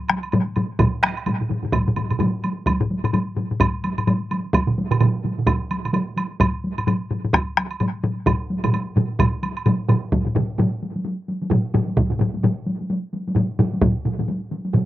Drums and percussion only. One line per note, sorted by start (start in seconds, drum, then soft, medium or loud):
0.00 taiko high soft
0.08 taiko rim medium
0.08 taiko high medium
0.08 high woodblock soft
0.23 taiko high soft
0.23 high woodblock soft
0.32 taiko low-mid loud
0.32 taiko high medium
0.32 high woodblock soft
0.47 taiko high soft
0.56 taiko low-mid medium
0.56 taiko high medium
0.56 high woodblock soft
0.71 taiko high soft
0.79 taiko medium
0.79 taiko low-mid loud
0.79 taiko mid loud
0.79 taiko high medium
0.79 high woodblock soft
1.03 taiko rim medium
1.03 taiko high medium
1.17 high woodblock soft
1.26 taiko low-mid medium
1.26 taiko mid medium
1.26 taiko high medium
1.26 high woodblock soft
1.40 taiko low-mid medium
1.40 taiko mid medium
1.49 taiko low-mid medium
1.49 taiko mid medium
1.49 taiko high medium
1.62 taiko low-mid medium
1.62 taiko mid medium
1.62 taiko high soft
1.72 taiko medium
1.72 taiko low-mid medium
1.72 taiko mid medium
1.72 taiko high medium
1.72 high woodblock medium
1.87 taiko low-mid medium
1.87 taiko mid medium
1.87 taiko high soft
1.96 taiko low-mid medium
1.96 taiko mid medium
1.96 taiko high medium
1.96 high woodblock soft
2.10 taiko low-mid medium
2.10 taiko mid medium
2.10 high woodblock soft
2.19 taiko low-mid loud
2.19 taiko mid medium
2.19 taiko high medium
2.19 high woodblock soft
2.44 taiko high medium
2.44 high woodblock soft
2.58 taiko high soft
2.66 taiko medium
2.66 taiko high medium
2.66 high woodblock medium
2.81 taiko low-mid medium
2.91 taiko high medium
3.04 taiko low-mid medium
3.04 high woodblock soft
3.13 taiko low-mid medium
3.13 taiko high medium
3.13 high woodblock soft
3.29 taiko high soft
3.37 taiko low-mid medium
3.37 taiko high medium
3.51 taiko low-mid medium
3.51 taiko high soft
3.60 taiko medium
3.60 taiko low-mid medium
3.60 taiko high medium
3.60 high woodblock medium
3.75 taiko high soft
3.84 taiko high medium
3.84 high woodblock soft
3.98 taiko low-mid medium
3.98 taiko high soft
3.98 high woodblock soft
4.07 taiko low-mid medium
4.07 taiko high medium
4.07 high woodblock soft
4.22 taiko high soft
4.31 taiko high medium
4.31 high woodblock soft
4.45 taiko high soft
4.53 taiko loud
4.53 taiko high medium
4.53 high woodblock medium
4.67 taiko mid medium
4.67 taiko high soft
4.78 taiko high medium
4.91 taiko mid loud
4.91 high woodblock soft
5.00 taiko mid loud
5.00 taiko high medium
5.00 high woodblock soft
5.15 taiko high soft
5.24 taiko mid medium
5.24 taiko high medium
5.38 taiko mid medium
5.47 taiko loud
5.47 taiko mid medium
5.47 taiko high medium
5.47 high woodblock medium
5.61 taiko high soft
5.71 taiko high medium
5.71 high woodblock soft
5.84 taiko mid medium
5.84 taiko high soft
5.84 high woodblock soft
5.93 taiko mid medium
5.93 taiko high medium
5.93 high woodblock soft
6.08 taiko high soft
6.17 taiko high medium
6.17 high woodblock soft
6.40 taiko medium
6.40 taiko low-mid medium
6.40 taiko high medium
6.40 high woodblock medium
6.64 taiko high soft
6.78 taiko low-mid medium
6.78 high woodblock soft
6.87 taiko low-mid medium
6.87 taiko high medium
6.87 high woodblock soft
7.01 taiko high soft
7.11 taiko low-mid medium
7.11 taiko high soft
7.25 taiko low-mid medium
7.25 taiko high soft
7.33 taiko rim medium
7.33 taiko medium
7.33 taiko high medium
7.33 high woodblock medium
7.57 taiko rim medium
7.57 taiko high soft
7.57 high woodblock soft
7.71 taiko high soft
7.71 high woodblock soft
7.80 taiko low-mid medium
7.80 taiko high medium
7.80 high woodblock soft
8.03 taiko low-mid loud
8.03 taiko high medium
8.17 taiko high soft
8.26 taiko medium
8.26 taiko low-mid medium
8.26 taiko mid medium
8.26 taiko high medium
8.26 high woodblock medium
8.50 taiko high medium
8.64 taiko low-mid medium
8.64 taiko mid loud
8.64 taiko high medium
8.64 high woodblock soft
8.73 taiko high medium
8.73 high woodblock soft
8.87 taiko high soft
8.96 taiko low-mid medium
8.96 taiko mid medium
8.96 taiko high medium
9.11 taiko high soft
9.19 taiko medium
9.19 taiko low-mid medium
9.19 taiko mid medium
9.19 taiko high medium
9.19 high woodblock medium
9.34 taiko high soft
9.43 taiko high medium
9.43 high woodblock soft
9.57 taiko high soft
9.57 high woodblock soft
9.66 taiko low-mid loud
9.66 taiko mid medium
9.66 taiko high medium
9.66 high woodblock soft
9.80 taiko high soft
9.89 taiko low-mid loud
9.89 taiko mid loud
9.89 taiko high medium
9.89 high woodblock soft
10.04 taiko high soft
10.12 taiko medium
10.12 taiko low-mid medium
10.12 taiko mid medium
10.12 taiko high medium
10.25 taiko low-mid medium
10.25 taiko mid medium
10.35 taiko low-mid loud
10.35 taiko mid loud
10.35 taiko high medium
10.58 taiko low-mid loud
10.58 taiko mid loud
10.58 taiko high medium
10.82 taiko high soft
10.96 taiko high soft
11.05 taiko high medium
11.28 taiko high soft
11.42 taiko high soft
11.51 taiko low-mid loud
11.51 taiko mid medium
11.51 taiko high medium
11.74 taiko low-mid loud
11.74 taiko mid loud
11.74 taiko high soft
11.88 taiko high soft
11.97 taiko medium
11.97 taiko low-mid medium
11.97 taiko mid medium
11.97 taiko high medium
12.11 taiko low-mid medium
12.11 taiko mid medium
12.20 taiko low-mid medium
12.20 taiko mid medium
12.20 taiko high soft
12.34 taiko high medium
12.43 taiko low-mid medium
12.43 taiko mid medium
12.43 taiko high medium
12.67 taiko high medium
12.81 taiko high soft
12.90 taiko high medium
13.13 taiko high soft
13.28 taiko high medium
13.36 taiko low-mid loud
13.36 taiko mid medium
13.36 taiko high medium
13.59 taiko low-mid medium
13.59 taiko mid loud
13.59 taiko high medium
13.73 taiko high medium
13.82 taiko medium
13.82 taiko low-mid loud
13.82 taiko mid medium
13.82 taiko high medium
14.05 taiko low-mid medium
14.05 taiko mid medium
14.05 taiko high soft
14.19 taiko low-mid medium
14.19 taiko mid medium
14.19 taiko high medium
14.28 taiko high medium
14.51 taiko high medium
14.65 taiko high soft
14.74 taiko low-mid medium
14.74 taiko mid medium
14.74 taiko high medium